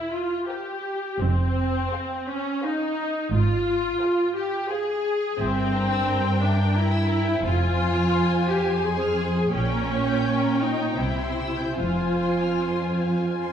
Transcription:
0.00 0.11 E4 medium
0.00 0.31 A#4 soft
0.00 0.31 C5 soft
0.00 0.31 G5 soft
0.13 0.49 F4 medium
0.48 1.19 G4 soft
0.48 1.03 A#4 soft
0.48 1.03 C5 soft
0.48 1.03 G5 soft
1.20 1.78 F1 soft
1.20 1.77 F2 soft
1.20 2.27 C4 medium
1.92 2.45 G#4 soft
1.92 2.45 C5 soft
1.92 2.46 F5 soft
2.28 2.63 C#4 medium
2.63 3.33 D#4 medium
2.63 3.16 G#4 soft
2.63 3.16 C5 soft
2.63 3.15 F5 soft
3.33 3.88 G#1 medium
3.33 3.87 G#2 medium
3.33 4.34 F4 medium
4.02 4.53 G#4 soft
4.02 4.53 C5 soft
4.02 4.53 F5 soft
4.36 4.70 G4 medium
4.70 5.39 G#4 medium
4.70 5.22 G#4 soft
4.70 5.22 C5 soft
4.70 5.22 F5 soft
5.38 6.04 G1 soft
5.38 7.39 G2 soft
5.38 6.42 C4 medium
5.38 7.40 A#4 soft
5.38 5.55 E5 soft
5.38 7.40 G5 soft
5.57 5.74 G5 soft
5.74 5.91 A#5 soft
5.91 6.08 E6 soft
6.08 6.25 A#5 soft
6.25 6.42 G5 soft
6.41 6.76 D4 medium
6.41 6.59 E5 soft
6.59 6.76 G5 soft
6.76 7.44 E4 medium
6.76 6.93 A#5 soft
6.92 7.10 E6 soft
7.08 7.26 A#5 soft
7.25 7.43 G5 soft
7.43 8.10 F1 soft
7.43 9.50 F2 soft
7.43 8.47 F4 medium
7.43 9.50 C5 soft
7.43 7.59 F5 soft
7.43 9.55 G#5 soft
7.60 7.78 G#5 soft
7.77 7.96 C6 soft
7.96 8.14 F6 soft
8.14 8.31 C6 soft
8.31 8.49 G#5 soft
8.48 8.84 G4 medium
8.48 8.66 F5 soft
8.66 8.84 G#5 soft
8.83 9.54 G#4 medium
8.83 9.01 C6 soft
9.01 9.19 F6 soft
9.20 9.37 C6 soft
9.38 9.55 G#5 soft
9.53 10.21 A#1 soft
9.53 10.97 A#2 soft
9.53 10.59 C#4 medium
9.53 10.98 C#5 soft
9.53 11.76 G5 soft
9.53 9.72 G5 soft
9.75 9.91 A#5 soft
9.92 10.09 C#6 soft
10.10 10.26 G6 soft
10.28 10.45 C#6 soft
10.46 10.63 A#5 soft
10.62 11.00 D#4 soft
10.62 10.82 G5 soft
10.84 11.01 A#5 soft
10.99 11.75 C2 soft
10.99 11.78 C3 soft
10.99 11.79 E4 soft
10.99 13.53 C5 soft
10.99 11.19 G5 soft
11.20 11.39 C6 soft
11.40 11.60 E6 soft
11.58 11.79 G6 soft
11.79 12.58 F1 soft
11.79 13.53 F2 soft
11.79 13.53 F4 soft
11.79 11.99 F5 soft
11.79 13.53 G#5 soft
12.00 12.21 G#5 soft
12.21 12.41 C6 soft
12.42 12.62 F6 soft
12.62 12.83 C6 soft
12.82 13.03 G#5 soft
13.03 13.23 F5 soft
13.23 13.43 G#5 soft
13.43 13.53 C6 soft

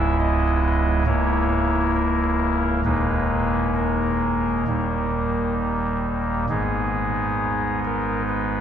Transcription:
0.00 1.03 C#1 medium
0.00 1.03 C#2 medium
0.00 1.04 G#3 medium
0.00 1.03 B3 medium
0.00 1.03 E4 soft
0.00 0.17 E5 loud
0.19 1.05 D#5 loud
1.06 2.81 C#1 medium
1.06 2.81 C#2 medium
1.06 2.81 A#3 medium
1.06 2.81 E4 soft
1.06 1.93 C#5 loud
1.95 2.82 A#4 medium
2.85 4.64 D#1 medium
2.85 4.64 D#2 soft
2.85 4.64 G#3 soft
2.85 4.64 A#3 soft
2.85 4.64 D#4 soft
2.85 3.74 B4 medium
3.75 5.54 A#4 medium
4.67 6.45 D#1 soft
4.67 6.45 D#2 soft
4.67 6.45 G3 soft
4.67 6.45 A#3 soft
4.67 6.45 D#4 soft
6.50 8.61 G#1 medium
6.50 8.61 G#2 medium
6.50 8.61 G#3 soft
6.50 8.61 B3 soft
6.50 8.61 D#4 soft
6.50 7.80 G#4 medium
7.85 8.22 A#4 medium
8.28 8.61 B4 medium

